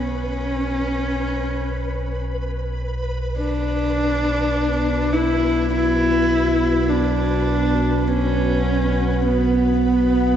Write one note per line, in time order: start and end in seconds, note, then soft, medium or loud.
0.00 10.37 B1 medium
0.00 10.37 B2 medium
0.00 2.22 C#4 medium
0.00 10.37 B4 medium
3.37 10.37 B3 medium
3.37 5.15 D4 loud
4.35 10.37 F#4 medium
5.13 5.71 E4 medium
5.71 6.91 E4 loud
6.38 10.37 B4 medium
6.90 8.09 D4 medium
7.84 10.37 F#5 medium
8.07 9.25 C#4 medium
9.26 10.37 B3 medium